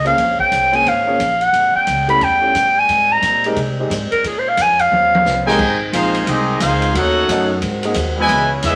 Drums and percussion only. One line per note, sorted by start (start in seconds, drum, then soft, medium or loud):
0.06 ride soft
0.18 kick soft
0.18 ride medium
0.39 kick medium
0.52 kick soft
0.52 hi-hat pedal medium
0.52 ride medium
0.73 ride soft
0.86 kick soft
0.86 ride medium
1.20 kick soft
1.20 hi-hat pedal medium
1.20 ride medium
1.41 ride soft
1.53 kick soft
1.53 ride medium
1.87 kick soft
1.87 hi-hat pedal medium
1.87 ride medium
2.09 ride soft
2.21 kick soft
2.21 ride medium
2.55 kick soft
2.55 hi-hat pedal medium
2.55 ride medium
2.89 kick soft
2.89 ride medium
3.22 kick soft
3.22 hi-hat pedal medium
3.22 ride medium
3.44 ride soft
3.56 kick soft
3.56 ride medium
3.90 kick soft
3.90 hi-hat pedal medium
3.90 ride medium
4.12 ride soft
4.24 kick soft
4.24 ride medium
4.57 kick soft
4.57 hi-hat pedal medium
4.57 ride medium
4.79 ride medium
4.92 high tom soft
5.15 high tom medium
5.26 snare medium
5.26 hi-hat pedal medium
5.48 snare medium
5.59 kick medium
5.59 crash medium
5.93 kick soft
5.93 hi-hat pedal medium
5.93 ride medium
6.14 ride medium
6.27 kick soft
6.27 ride medium
6.60 kick soft
6.60 hi-hat pedal medium
6.60 ride medium
6.82 ride medium
6.95 kick soft
6.95 ride medium
7.29 kick soft
7.29 hi-hat pedal medium
7.29 ride medium
7.62 kick soft
7.62 ride medium
7.83 ride medium
7.94 kick soft
7.94 hi-hat pedal medium
7.94 ride medium
8.29 kick soft
8.29 ride medium
8.62 kick soft
8.62 snare soft
8.62 hi-hat pedal medium
8.62 ride medium